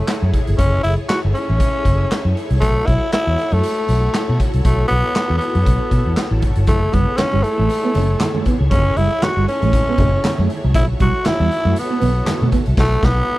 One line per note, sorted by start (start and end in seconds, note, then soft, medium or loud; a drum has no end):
0.00 0.32 A3 medium
0.00 2.58 E4 medium
0.00 2.58 G#4 medium
0.00 10.70 A4 medium
0.00 6.64 C#5 medium
0.08 snare medium
0.08 clap medium
0.08 closed hi-hat loud
0.22 0.30 F#2 medium
0.33 kick medium
0.33 closed hi-hat medium
0.47 0.56 G1 medium
0.47 closed hi-hat medium
0.58 0.77 F#1 medium
0.58 0.82 C#4 medium
0.58 kick loud
0.58 closed hi-hat loud
0.83 0.95 F#1 medium
0.83 0.95 E4 medium
0.83 closed hi-hat medium
1.09 1.20 F#4 medium
1.09 snare loud
1.09 clap medium
1.09 closed hi-hat medium
1.25 1.32 G1 medium
1.35 2.32 C#4 medium
1.35 closed hi-hat medium
1.50 1.58 A1 medium
1.60 kick medium
1.60 closed hi-hat loud
1.85 2.04 F#1 medium
1.85 kick medium
1.85 closed hi-hat medium
2.11 snare medium
2.11 clap medium
2.11 closed hi-hat medium
2.25 2.33 F#2 medium
2.37 closed hi-hat medium
2.50 2.62 C2 medium
2.50 closed hi-hat medium
2.61 2.80 B1 medium
2.61 2.88 A3 loud
2.61 13.38 E4 medium
2.61 6.63 F#4 medium
2.61 kick loud
2.61 closed hi-hat loud
2.86 2.98 B1 medium
2.86 3.12 E4 medium
2.86 kick medium
2.86 closed hi-hat medium
3.12 3.55 E4 loud
3.12 snare loud
3.12 clap medium
3.12 closed hi-hat medium
3.27 3.35 E2 medium
3.38 closed hi-hat medium
3.51 3.60 F#2 medium
3.51 4.40 A3 medium
3.51 closed hi-hat soft
3.63 closed hi-hat loud
3.88 4.07 B1 medium
3.88 closed hi-hat medium
4.14 snare loud
4.14 clap medium
4.14 closed hi-hat medium
4.29 4.37 B2 medium
4.40 kick medium
4.40 closed hi-hat medium
4.53 4.62 C2 medium
4.53 closed hi-hat medium
4.65 4.83 B1 medium
4.65 4.88 A3 medium
4.65 kick loud
4.65 closed hi-hat loud
4.88 5.01 B1 medium
4.88 5.36 B3 loud
4.88 closed hi-hat medium
5.15 snare loud
5.15 clap medium
5.15 closed hi-hat medium
5.30 5.38 E2 medium
5.38 6.37 B3 medium
5.38 closed hi-hat medium
5.55 5.63 F#2 medium
5.55 closed hi-hat soft
5.66 5.77 B1 medium
5.66 kick loud
5.66 closed hi-hat loud
5.91 6.02 B2 medium
5.91 kick medium
5.91 closed hi-hat medium
6.06 6.14 E2 medium
6.17 snare loud
6.17 clap medium
6.17 closed hi-hat medium
6.31 6.43 A1 medium
6.42 6.53 G#1 medium
6.42 kick medium
6.42 closed hi-hat medium
6.55 6.68 G1 medium
6.55 closed hi-hat medium
6.67 6.86 F#1 medium
6.67 6.77 F#3 medium
6.67 6.95 A3 medium
6.67 10.71 G#4 medium
6.67 13.38 C#5 loud
6.67 kick loud
6.67 closed hi-hat loud
6.67 muted conga medium
6.92 7.04 F#1 medium
6.92 7.02 G3 medium
6.92 7.19 B3 medium
6.92 kick loud
6.92 closed hi-hat medium
7.07 muted clean electric guitar stroke soft
7.17 7.45 C#4 loud
7.17 snare loud
7.17 clap medium
7.17 closed hi-hat medium
7.17 high conga medium
7.32 7.41 G1 medium
7.32 7.39 G3 medium
7.43 8.45 A3 medium
7.43 closed hi-hat medium
7.57 7.67 A1 medium
7.57 7.65 A3 medium
7.68 muted clean electric guitar stroke soft
7.68 closed hi-hat medium
7.84 7.91 B3 medium
7.94 8.14 F#1 medium
7.94 8.04 C#4 medium
7.94 closed hi-hat medium
7.94 muted conga medium
8.20 muted clean electric guitar stroke soft
8.20 snare medium
8.20 clap medium
8.20 closed hi-hat medium
8.20 high conga medium
8.34 8.42 A3 medium
8.34 high conga medium
8.45 8.55 B3 medium
8.45 muted fingered electric bass stroke soft
8.45 kick medium
8.45 closed hi-hat medium
8.61 8.68 C#2 loud
8.71 8.90 F#1 loud
8.71 8.80 F#3 medium
8.71 8.99 C#4 loud
8.71 kick loud
8.71 closed hi-hat loud
8.71 muted conga medium
8.96 9.07 F#1 medium
8.96 9.06 G3 medium
8.96 9.25 E4 medium
8.96 closed hi-hat medium
9.11 muted clean electric guitar stroke soft
9.22 9.48 F#4 loud
9.22 snare loud
9.22 clap medium
9.22 closed hi-hat medium
9.22 high conga medium
9.37 9.45 G1 medium
9.37 9.44 G3 medium
9.48 10.46 C#4 medium
9.48 muted clean electric guitar stroke soft
9.48 closed hi-hat medium
9.62 9.70 A1 medium
9.62 9.69 A3 medium
9.62 closed hi-hat soft
9.73 muted clean electric guitar stroke soft
9.73 kick loud
9.73 closed hi-hat loud
9.73 low conga medium
9.89 9.95 B3 medium
9.98 10.16 F#1 medium
9.98 10.08 C#4 medium
9.98 kick medium
9.98 closed hi-hat medium
9.98 muted conga medium
9.98 low conga medium
10.24 snare loud
10.24 clap medium
10.24 closed hi-hat medium
10.24 high conga medium
10.38 10.46 F#2 loud
10.38 10.46 A3 medium
10.38 high conga medium
10.50 muted clean electric guitar stroke soft
10.50 closed hi-hat medium
10.64 10.74 C2 medium
10.64 10.71 F#3 medium
10.74 10.93 B1 loud
10.74 10.84 F#3 medium
10.74 10.87 E4 loud
10.74 13.38 F#4 medium
10.74 13.38 A4 medium
10.74 kick loud
10.74 closed hi-hat loud
10.74 muted conga medium
10.99 11.11 B1 medium
10.99 11.09 G3 medium
10.99 11.28 F#4 loud
10.99 kick loud
10.99 closed hi-hat medium
11.14 muted clean electric guitar stroke soft
11.24 11.77 E4 loud
11.24 snare loud
11.24 clap medium
11.24 closed hi-hat medium
11.24 high conga medium
11.40 11.48 E2 medium
11.40 11.47 G3 medium
11.52 closed hi-hat medium
11.65 11.73 F#2 medium
11.65 11.72 A3 medium
11.76 12.50 B3 medium
11.76 muted clean electric guitar stroke soft
11.76 closed hi-hat loud
11.76 muted conga soft
11.90 11.97 B3 medium
12.00 12.20 B1 medium
12.00 12.10 B3 medium
12.00 closed hi-hat medium
12.00 muted conga medium
12.26 muted clean electric guitar stroke soft
12.26 snare medium
12.26 clap medium
12.26 closed hi-hat medium
12.26 high conga medium
12.41 12.50 B2 medium
12.41 12.49 A3 medium
12.41 high conga medium
12.52 12.61 B3 medium
12.52 kick medium
12.52 closed hi-hat medium
12.66 12.75 C2 medium
12.66 closed hi-hat medium
12.77 12.95 B1 loud
12.77 13.06 A3 loud
12.77 kick loud
12.77 snare loud
12.77 crash medium
13.03 13.21 B1 medium
13.03 13.38 B3 loud
13.03 kick loud
13.03 snare loud